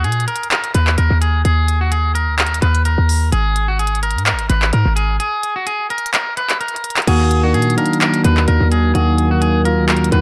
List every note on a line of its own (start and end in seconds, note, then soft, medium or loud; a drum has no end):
0.04 0.27 A#2 loud
0.04 0.24 G#4 medium
0.04 closed hi-hat medium
0.12 closed hi-hat medium
0.20 closed hi-hat medium
0.28 0.47 A#4 medium
0.28 closed hi-hat medium
0.36 closed hi-hat medium
0.43 closed hi-hat medium
0.51 0.71 A#4 medium
0.51 clap loud
0.51 closed hi-hat medium
0.64 closed hi-hat medium
0.74 0.97 D#2 loud
0.74 0.94 B4 medium
0.74 closed hi-hat medium
0.87 clap medium
0.98 1.10 D#2 loud
0.98 1.17 A#4 medium
0.98 closed hi-hat medium
1.10 1.44 D#2 loud
1.21 1.41 G#4 medium
1.21 closed hi-hat medium
1.45 2.29 D#2 loud
1.45 1.79 G#4 loud
1.45 closed hi-hat medium
1.68 closed hi-hat medium
1.81 1.90 F#4 medium
1.92 2.11 G#4 medium
1.92 closed hi-hat medium
2.15 2.34 A#4 medium
2.15 closed hi-hat medium
2.28 2.46 D2 loud
2.39 2.58 A#4 medium
2.39 clap loud
2.39 closed hi-hat soft
2.45 2.61 D#2 loud
2.45 closed hi-hat medium
2.54 closed hi-hat medium
2.62 2.97 D#2 loud
2.62 2.81 B4 medium
2.62 closed hi-hat medium
2.75 closed hi-hat soft
2.85 3.30 A#4 medium
2.85 closed hi-hat medium
2.98 3.31 D#2 loud
3.09 open hi-hat medium
3.32 4.17 G#1 loud
3.32 3.66 G#4 loud
3.32 closed hi-hat medium
3.56 closed hi-hat medium
3.68 3.77 F#4 medium
3.79 3.99 G#4 medium
3.79 closed hi-hat medium
3.87 closed hi-hat medium
3.95 closed hi-hat medium
4.03 4.22 A#4 medium
4.03 closed hi-hat medium
4.11 closed hi-hat medium
4.15 4.34 G#2 loud
4.15 closed hi-hat medium
4.26 4.45 A#4 medium
4.26 clap loud
4.26 closed hi-hat medium
4.32 4.49 G#1 loud
4.39 closed hi-hat medium
4.50 4.72 G#1 loud
4.50 4.69 B4 medium
4.50 closed hi-hat medium
4.62 clap medium
4.73 4.85 G#2 loud
4.73 4.93 A#4 medium
4.73 closed hi-hat medium
4.86 5.19 G#1 loud
4.96 5.16 G#4 medium
4.96 closed hi-hat medium
5.20 5.54 G#4 loud
5.20 closed hi-hat medium
5.43 closed hi-hat medium
5.56 5.65 F#4 medium
5.67 5.86 G#4 medium
5.67 closed hi-hat medium
5.90 6.10 A#4 medium
5.90 closed hi-hat soft
5.98 closed hi-hat medium
6.06 closed hi-hat medium
6.14 6.33 A#4 medium
6.14 clap loud
6.14 closed hi-hat medium
6.37 6.56 B4 medium
6.37 closed hi-hat medium
6.50 clap medium
6.50 closed hi-hat medium
6.61 7.05 A#4 medium
6.61 closed hi-hat soft
6.68 closed hi-hat medium
6.76 closed hi-hat medium
6.84 closed hi-hat medium
6.90 closed hi-hat medium
6.96 clap loud
6.96 closed hi-hat medium
7.02 closed hi-hat soft
7.07 7.56 D#2 loud
7.07 7.34 D#3 loud
7.07 10.21 D#3 medium
7.07 10.21 F#3 medium
7.07 10.21 A#3 medium
7.07 7.34 A#3 medium
7.07 7.34 F#4 loud
7.07 7.41 G#4 loud
7.07 closed hi-hat medium
7.07 crash loud
7.31 closed hi-hat medium
7.43 7.70 D#3 medium
7.43 7.70 A#3 medium
7.43 7.70 D4 medium
7.43 7.52 F#4 medium
7.54 7.77 A#2 loud
7.54 7.74 G#4 medium
7.54 closed hi-hat medium
7.62 closed hi-hat medium
7.70 closed hi-hat medium
7.77 8.48 D#3 medium
7.77 8.48 A#3 medium
7.77 8.49 D4 medium
7.77 7.97 A#4 medium
7.77 closed hi-hat medium
7.86 closed hi-hat medium
7.93 closed hi-hat medium
8.01 8.21 A#4 medium
8.01 clap loud
8.01 closed hi-hat medium
8.14 closed hi-hat medium
8.24 8.47 D#2 loud
8.24 8.44 B4 medium
8.24 closed hi-hat medium
8.37 clap medium
8.48 8.60 D#2 loud
8.48 8.67 A#4 loud
8.48 closed hi-hat medium
8.61 8.94 D#2 loud
8.72 8.91 G#4 medium
8.72 closed hi-hat medium
8.94 9.79 D#2 loud
8.94 9.21 D#3 loud
8.94 9.21 A#3 loud
8.94 9.22 F#4 loud
8.94 9.29 G#4 loud
8.94 closed hi-hat medium
9.18 closed hi-hat medium
9.31 9.57 D#3 medium
9.31 9.57 A#3 medium
9.31 9.58 D#4 medium
9.31 9.40 F#4 medium
9.41 9.61 G#4 medium
9.41 closed hi-hat medium
9.65 10.01 D#3 medium
9.65 10.01 A#3 medium
9.65 10.02 F4 medium
9.65 9.85 A#4 medium
9.65 closed hi-hat medium
9.78 9.96 D2 loud
9.89 10.08 A#4 loud
9.89 clap loud
9.89 closed hi-hat soft
9.95 10.11 D#2 loud
9.95 closed hi-hat medium
10.04 closed hi-hat medium
10.12 10.21 D#2 loud
10.12 10.21 D#3 medium
10.12 10.21 A#3 medium
10.12 10.21 F#4 medium
10.12 10.21 B4 medium
10.12 closed hi-hat medium